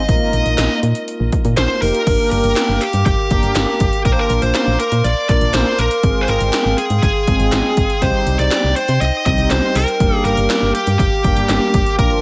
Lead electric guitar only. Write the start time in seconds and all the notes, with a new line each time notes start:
Already playing: D#5
1.57 C5
1.82 A#4
2.32 A#4
2.81 G4
3.06 G4
4.05 A#4
4.12 C5
4.19 A#4
4.42 C5
4.80 A#4
5.04 D5
5.29 D5
5.54 C5
5.79 A#4
6.21 C5
6.28 A#4
6.78 G#4
7.03 G#4
8.02 C5
8.39 D5
8.76 C5
9.01 D#5
9.26 D#5
9.51 C5
9.75 A#4
10.25 A#4
10.75 G4
10.99 G4
11.99 A#4